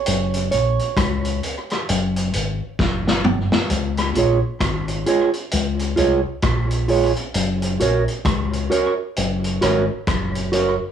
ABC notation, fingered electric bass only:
X:1
M:4/4
L:1/16
Q:"Swing 16ths" 1/4=66
K:Db
V:1 name="Fingered electric bass" clef=bass
G,,,2 B,,, z D,,2 z2 G,,,2 A,,, z G,,,3 z | D,,2 B,,, z A,,,2 z2 D,,2 C,, z B,,,3 z | G,,,2 B,,, z D,,2 z2 G,,,2 A,,, z G,,,3 z |]